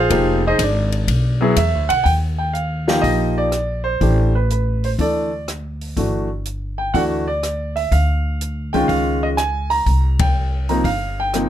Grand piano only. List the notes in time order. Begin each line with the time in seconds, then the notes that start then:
Already playing: F4 G#4 C5 F5
0.10 F3 A#3 D#4 G4
0.47 D#4 G#4 C5 D#5
0.63 D4 D5
1.41 F#3 B3 E4 G#4
1.57 E5
1.89 F#5
2.04 G5
2.38 G5
2.53 F5
2.87 F3 A#3 D#4 G4 F5
3.02 D#5
3.38 D5
3.84 C5
4.01 E3 A3 D4 G4
4.35 B4
4.51 B4
4.85 C5
4.99 E3 A3 D4 A4 D5
5.97 E3 A3 D4 F#4
6.78 G5
6.94 E3 A3 D4 F#4 F#5
7.28 D5
7.76 E5
7.92 F5
8.73 D#3 G#3 C#4 F4 G5
8.88 F5
9.23 D#5
9.37 G#5
9.70 A#5
10.20 G5
10.69 C3 F3 A#3 D#4 A#5
10.85 F5
11.20 G5
11.34 C3 F3 A#3 D#4